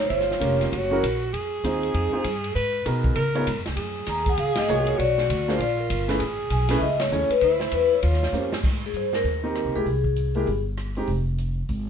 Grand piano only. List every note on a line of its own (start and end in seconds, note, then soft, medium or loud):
0.40 0.71 A#3 medium
0.40 0.71 C#4 medium
0.40 0.71 F4 medium
0.40 0.71 G4 medium
0.40 0.71 A#4 medium
0.91 1.01 C#4 medium
0.91 1.02 E4 medium
0.91 1.02 F#4 medium
0.91 1.02 G#4 medium
0.91 1.02 A#4 medium
1.64 2.09 C4 medium
1.64 2.09 D#4 soft
1.64 2.10 F4 soft
1.64 2.09 G#4 soft
1.64 2.10 C5 medium
2.12 2.23 C4 medium
2.12 2.23 D#4 medium
2.12 2.23 F4 medium
2.12 2.24 G#4 medium
2.12 2.24 C5 medium
2.85 3.16 B3 medium
2.85 3.16 D#4 soft
2.85 3.16 F#4 soft
2.85 3.16 G#4 medium
2.85 3.16 A#4 medium
3.35 3.46 B3 medium
3.35 3.46 D#4 medium
3.35 3.46 F4 medium
3.35 3.46 G#4 medium
3.35 3.46 C#5 medium
4.69 4.99 A#3 medium
4.69 4.99 F4 medium
4.69 4.99 F#4 medium
4.69 5.00 G#4 medium
4.69 5.00 C#5 medium
5.48 5.59 A#3 medium
5.48 5.59 D4 medium
5.48 5.59 F4 medium
5.48 5.59 G#4 medium
5.48 5.59 C5 medium
6.08 6.19 A3 medium
6.08 6.19 C#4 medium
6.08 6.19 E4 medium
6.08 6.20 G#4 medium
6.08 6.20 B4 medium
6.70 6.81 A3 medium
6.70 6.81 C#4 medium
6.70 6.81 E4 medium
6.70 6.81 G#4 medium
6.70 6.81 B4 medium
7.12 7.29 A3 medium
7.12 7.29 C#4 medium
7.12 7.29 E4 medium
7.12 7.29 G#4 medium
7.12 7.29 C#5 medium
8.33 8.50 A#3 medium
8.33 8.50 C#4 medium
8.33 8.50 F4 medium
8.33 8.50 G4 medium
8.33 8.50 C5 medium
9.43 9.72 A#3 medium
9.43 9.72 C4 medium
9.43 9.72 D#4 medium
9.43 9.73 G4 medium
9.74 9.85 G#3 medium
9.74 9.85 A#3 medium
9.74 9.85 E4 medium
9.74 9.85 G4 medium
10.35 10.46 G#3 medium
10.35 10.46 A#3 medium
10.35 10.46 E4 medium
10.35 10.46 G4 medium
10.97 11.07 G#3 medium
10.97 11.07 C4 medium
10.97 11.07 D#4 medium
10.97 11.07 G4 medium